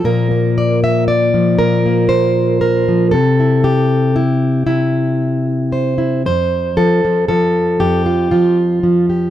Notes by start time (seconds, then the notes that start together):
0.04 A#2 F3 A#3 A#4
0.31 A#3
0.58 D5
0.84 E5
1.08 D5
1.34 F3
1.59 A#2 A#4
1.86 A#3
2.09 C5
2.61 A#4
2.88 F3
3.11 C3 A4
3.40 E4
3.64 G4
4.16 E4
4.67 C3 E4
5.72 C5
5.98 E4
6.26 F2 C5
6.77 F3 A4
7.05 F3
7.28 F3 A4
7.80 F2 G4
8.06 F4
8.31 F3 F4
8.83 F3
9.10 G4